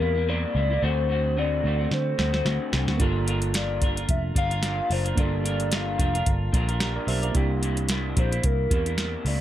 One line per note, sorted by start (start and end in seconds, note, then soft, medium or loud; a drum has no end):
0.00 0.44 E2 medium
0.00 0.15 C3 medium
0.00 0.16 G3 medium
0.00 0.15 A#3 medium
0.00 0.13 E4 medium
0.00 0.31 A#4 loud
0.15 0.27 G3 soft
0.15 0.28 A#3 soft
0.15 0.27 E4 medium
0.27 0.54 C3 medium
0.27 0.55 G3 medium
0.27 0.56 A#3 medium
0.27 0.56 E4 medium
0.27 0.85 D5 loud
0.55 0.77 C#2 medium
0.55 0.70 C3 medium
0.55 0.70 G3 medium
0.55 0.70 A#3 medium
0.55 0.68 E4 medium
0.70 0.82 G3 soft
0.70 0.83 A#3 soft
0.70 0.82 E4 medium
0.82 1.60 D2 loud
0.82 1.08 D3 medium
0.82 1.09 A3 medium
0.82 1.10 C4 medium
0.82 1.10 F#4 medium
0.82 1.40 C5 loud
1.09 1.36 D3 medium
1.09 1.36 A3 medium
1.09 1.37 C4 medium
1.09 1.37 F#4 medium
1.37 1.62 D3 medium
1.37 1.64 A3 medium
1.37 1.65 C4 medium
1.37 1.65 F#4 medium
1.37 1.92 D5 loud
1.64 1.86 D2 medium
1.64 1.79 D3 medium
1.64 1.79 A3 medium
1.64 1.79 C4 medium
1.64 1.77 F#4 medium
1.78 2.18 A3 soft
1.78 2.19 C4 medium
1.78 2.18 F#4 soft
1.91 2.13 D3 loud
1.91 2.70 C5 medium
1.91 snare medium
2.18 2.40 D2 medium
2.18 2.33 D3 medium
2.18 2.34 A3 medium
2.18 2.33 C4 medium
2.18 2.31 F#4 medium
2.18 snare medium
2.33 2.45 A3 soft
2.33 2.46 C4 soft
2.33 2.45 F#4 soft
2.33 snare medium
2.45 2.57 D2 medium
2.45 2.71 D3 medium
2.45 2.72 A3 medium
2.45 2.73 C4 medium
2.45 2.74 F#4 medium
2.45 snare medium
2.72 2.85 C2 medium
2.72 2.87 D3 medium
2.72 2.88 A3 medium
2.72 2.88 C4 medium
2.72 2.86 F#4 medium
2.72 snare medium
2.87 2.98 D2 medium
2.87 2.99 A3 soft
2.87 3.00 C4 medium
2.87 3.00 F#4 medium
2.87 snare medium
2.98 4.05 G1 loud
2.98 3.25 G3 medium
2.98 5.12 A#3 medium
2.98 5.13 D4 medium
2.98 3.26 D4 medium
2.98 5.14 F4 medium
2.98 3.27 F4 medium
2.98 3.28 A#4 medium
2.98 kick loud
2.98 closed hi-hat medium
3.02 5.15 A4 medium
3.26 3.53 G3 medium
3.26 3.54 D4 medium
3.26 3.54 F4 medium
3.26 3.55 A#4 medium
3.26 closed hi-hat medium
3.42 closed hi-hat soft
3.54 3.80 G3 medium
3.54 3.81 D4 medium
3.54 3.82 F4 medium
3.54 3.83 A#4 medium
3.54 4.06 D5 loud
3.54 snare loud
3.54 closed hi-hat medium
3.82 3.97 G3 medium
3.82 3.97 D4 medium
3.82 3.96 F4 medium
3.82 3.94 A#4 medium
3.82 kick medium
3.82 closed hi-hat medium
3.96 4.35 D4 soft
3.96 4.36 F4 soft
3.96 4.36 A#4 soft
3.96 closed hi-hat medium
4.09 4.31 F1 medium
4.09 4.22 E5 loud
4.09 kick medium
4.09 closed hi-hat medium
4.35 4.79 G1 medium
4.35 4.50 G3 medium
4.35 4.51 D4 medium
4.35 4.51 F4 medium
4.35 4.49 A#4 medium
4.35 4.94 F5 loud
4.35 kick medium
4.35 closed hi-hat medium
4.50 4.63 D4 soft
4.50 4.63 F4 soft
4.50 4.63 A#4 medium
4.50 closed hi-hat soft
4.63 4.89 G3 medium
4.63 4.90 D4 medium
4.63 4.91 F4 medium
4.63 4.92 A#4 medium
4.63 snare loud
4.63 closed hi-hat medium
4.90 5.12 F#1 medium
4.90 5.05 G3 medium
4.90 5.06 D4 medium
4.90 5.05 F4 medium
4.90 5.03 A#4 medium
4.90 5.18 C5 loud
4.90 open hi-hat medium
5.04 5.17 D4 soft
5.04 5.17 F4 soft
5.04 5.17 A#4 medium
5.04 closed hi-hat soft
5.15 5.95 G1 loud
5.15 5.43 G3 medium
5.15 7.30 A#3 medium
5.15 7.31 D4 medium
5.15 5.44 D4 medium
5.15 7.32 F4 medium
5.15 5.45 F4 medium
5.15 5.46 A#4 medium
5.15 5.76 D5 loud
5.15 kick loud
5.15 closed hi-hat medium
5.20 6.79 A4 medium
5.44 5.70 G3 medium
5.44 5.71 D4 medium
5.44 5.72 F4 medium
5.44 5.72 A#4 medium
5.44 closed hi-hat medium
5.60 closed hi-hat soft
5.71 5.97 G3 medium
5.71 5.98 D4 medium
5.71 5.99 F4 medium
5.71 6.00 A#4 medium
5.71 6.55 F5 loud
5.71 snare loud
5.71 closed hi-hat medium
5.98 6.21 F1 medium
5.98 6.14 G3 medium
5.98 6.14 D4 medium
5.98 6.13 F4 medium
5.98 6.12 A#4 medium
5.98 kick medium
5.98 closed hi-hat medium
6.13 6.53 D4 soft
6.13 6.54 F4 soft
6.13 6.53 A#4 medium
6.13 closed hi-hat medium
6.26 6.48 G1 medium
6.26 kick medium
6.26 closed hi-hat medium
6.53 6.97 A#1 medium
6.53 6.68 G3 medium
6.53 6.69 D4 medium
6.53 6.69 F4 medium
6.53 6.67 A#4 medium
6.53 kick loud
6.53 closed hi-hat medium
6.69 6.80 D4 soft
6.69 6.80 F4 medium
6.69 6.81 A#4 medium
6.69 closed hi-hat soft
6.80 7.06 G3 medium
6.80 7.07 D4 medium
6.80 7.08 F4 loud
6.80 6.95 G4 medium
6.80 6.95 A#4 medium
6.80 7.08 A#4 loud
6.80 snare loud
6.80 closed hi-hat medium
6.95 7.08 A#4 medium
6.95 7.07 D5 medium
7.07 7.29 B1 medium
7.07 7.23 G3 medium
7.07 7.23 D4 medium
7.07 7.22 F4 medium
7.07 7.20 A#4 medium
7.07 7.22 C5 medium
7.07 7.22 E5 medium
7.07 open hi-hat medium
7.22 7.36 D4 medium
7.22 7.36 F4 soft
7.22 7.35 A#4 medium
7.22 7.49 A#4 medium
7.22 7.49 D5 medium
7.22 closed hi-hat soft
7.32 8.13 C2 loud
7.32 7.61 C3 medium
7.32 7.62 G3 medium
7.32 9.41 A#3 medium
7.32 9.41 D4 medium
7.32 9.41 E4 medium
7.32 kick loud
7.32 closed hi-hat medium
7.36 7.63 A#3 medium
7.36 7.63 E4 medium
7.36 9.41 G4 medium
7.62 7.88 C3 medium
7.62 7.89 G3 medium
7.62 7.90 A#3 medium
7.62 7.90 E4 medium
7.62 closed hi-hat medium
7.77 closed hi-hat soft
7.89 8.15 C3 medium
7.89 8.16 G3 loud
7.89 8.17 A#3 medium
7.89 8.18 E4 loud
7.89 snare loud
7.89 closed hi-hat medium
8.16 8.39 A#1 medium
8.16 8.31 C3 medium
8.16 8.32 G3 medium
8.16 8.31 A#3 medium
8.16 8.30 E4 medium
8.16 8.47 C5 medium
8.16 kick medium
8.16 closed hi-hat medium
8.31 8.70 G3 soft
8.31 8.71 A#3 soft
8.31 8.71 E4 medium
8.31 closed hi-hat medium
8.44 8.66 C2 medium
8.44 8.87 A#4 loud
8.44 kick medium
8.44 closed hi-hat medium
8.71 9.15 E2 medium
8.71 8.86 C3 medium
8.71 8.86 G3 medium
8.71 8.86 A#3 medium
8.71 8.84 E4 medium
8.71 kick loud
8.71 closed hi-hat medium
8.86 8.98 G3 soft
8.86 8.98 A#3 soft
8.86 8.98 E4 medium
8.86 9.24 A#4 loud
8.86 closed hi-hat soft
8.98 9.24 C3 medium
8.98 9.25 G3 medium
8.98 9.26 A#3 medium
8.98 9.27 E4 medium
8.98 snare loud
8.98 closed hi-hat medium
9.25 9.41 C#2 medium
9.25 9.41 C3 medium
9.25 9.41 G3 medium
9.25 9.41 A#3 medium
9.25 9.39 E4 medium
9.25 9.41 D5 loud
9.25 open hi-hat medium